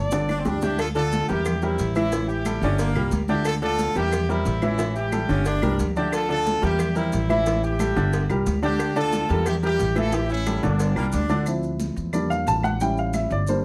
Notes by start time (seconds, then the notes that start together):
Already playing: G1 D5
0.11 D3 D4 D5, low bongo, high conga, maracas
0.29 D4, high bongo, high conga, claves, maracas
0.38 C4
0.45 D2 G3 D4 G4 G5, low bongo, high conga, maracas
0.62 E4 G4, low bongo, high conga, maracas
0.78 F4 A4, cowbell, high conga, claves, maracas
0.95 D3 D4 F4 A4 D5, cowbell, maracas
1.12 cowbell, high conga, maracas
1.29 E2 G3 E4 G4 A#4, cowbell, high conga, maracas
1.45 cowbell, high conga, low conga, claves, maracas
1.62 G3 C4 E4 G4 A#4, high conga, maracas
1.79 A1, cowbell, high conga, maracas
1.95 E3 C#4 E4 E5, high conga, claves, maracas
2.12 E3 E4 E5, cowbell, maracas
2.29 E4 G4, maracas
2.45 G3 G4 A4, cowbell, high conga, claves, maracas
2.61 G1 D3 C#4 D4 D5, cowbell, high conga, maracas
2.79 A#3, cowbell, high conga, maracas
2.95 C2 G3 G4 A#4, high conga, claves, maracas
3.11 D2, cowbell, high conga, maracas
3.28 D3 D4 E4 G4 D5, high conga, maracas
3.45 F4 A4, cowbell, high conga, claves, maracas
3.62 D3 D4 F4 A4 D5, cowbell, maracas
3.79 cowbell, high conga, maracas
3.95 E2 G3 E4 G4 A#4, cowbell, high conga, maracas
4.12 cowbell, high conga, low conga, claves, maracas
4.29 G3 C4 E4 G4 A#4, maracas
4.45 A1, cowbell, high conga, maracas
4.62 E3 C#4 E4 E5, high conga, claves, maracas
4.78 E3 E4 E5, cowbell, high conga, maracas
4.96 E4 G4, maracas
5.12 G3 G4 A4, cowbell, high conga, claves, maracas
5.29 G1 D3 C#4 D4 D5, cowbell, high conga, maracas
5.45 D4, cowbell, maracas
5.62 C2 G3 G4 A#4, high conga, claves, maracas
5.79 D2, cowbell, maracas
5.85 low conga
5.96 D3 D4 E4 G4 D5, low conga, maracas
6.12 F4 A4, cowbell, high conga, claves, maracas
6.29 D3 D4 F4 A4 D5, cowbell, high conga, maracas
6.46 cowbell, high conga, maracas
6.62 E2 G3 E4 G4 A#4, cowbell, high conga, maracas
6.79 cowbell, high conga, low conga, claves, maracas
6.95 G3 C4 E4 G4 A#4, high conga, low conga, maracas
7.12 A1, cowbell, high conga, maracas
7.29 E3 C#4 E4 E5, high conga, claves, maracas
7.46 E3 E4 E5, cowbell, high conga, maracas
7.64 E4 G4, maracas
7.79 G3 G4 A4, cowbell, high conga, claves, maracas
7.96 G1 D3 D4 D5, cowbell, high conga, maracas
8.13 cowbell, high conga, maracas
8.30 C2 G3 G4 A#4, high conga, claves, maracas
8.46 D2, cowbell, high conga, maracas
8.62 D3 D4 G4 D5, high conga, maracas
8.79 cowbell, high conga, claves, maracas
8.96 D3 D4 F4 A4 D5, cowbell, high conga, maracas
9.13 cowbell, high conga, maracas
9.29 E2 G3 F4 G4 A4 A#4, cowbell, high conga, maracas
9.46 E4 G4, cowbell, high conga, low conga, claves, maracas
9.63 G3 E4 G4 A#4, high conga, maracas
9.79 A1, cowbell, high conga, maracas
9.95 E3 E4 F4 A4 E5, high conga, claves, maracas
10.12 E3 E4 G4 E5, cowbell, maracas
10.30 C#4 E4, high conga, maracas
10.46 G3 G4 A4, cowbell, high conga, claves, maracas
10.63 G1 D3 A#3 D4 D5, cowbell, high conga, maracas
10.80 cowbell, high conga, maracas
10.96 C2 G3 A#3 G4 A#4, high conga, claves, maracas
11.11 D2 D4, cowbell, high conga, maracas
11.29 D3 D4 D5, high conga, maracas
11.46 F3 C4 E4, high conga, claves, maracas
11.63 high conga, maracas
11.80 high conga, maracas
11.96 E2, high conga, maracas
12.13 G3 A#3 D4 D5, high conga, low conga, claves, maracas
12.30 F5, high conga, low conga, maracas
12.46 A1 A5, high conga, maracas
12.63 F#5, high conga, claves, maracas
12.80 G3 C#4 E4 G5, high conga, maracas
12.97 F5, high conga, maracas
13.13 E5, high conga, claves, maracas
13.30 G1 D5, high conga, maracas
13.47 G3 A#3 D4 C5, high conga, maracas